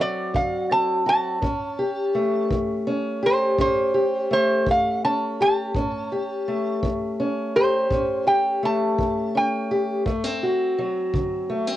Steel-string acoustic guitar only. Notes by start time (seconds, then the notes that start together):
Already playing: C4 F#4
0.00 F#3
0.34 D3
0.71 C4
1.06 F#4
1.42 A2 C#4
1.79 G4
2.15 A3
2.51 E3
2.87 C#4
3.23 G4
3.58 A2 C#4
3.94 G4
4.31 A3
4.67 E3
5.04 C#4
5.41 G4
5.76 A2 C#4
6.12 G4
6.48 A3
6.83 E3
7.20 C#4
7.56 G4
7.91 A2 C#4
8.27 G4
8.63 A3
8.98 E3
9.35 C#4
9.71 G4
10.06 D2 A3
10.24 C4
10.43 F#4
10.79 F#3
11.14 D3
11.49 A3
11.67 C4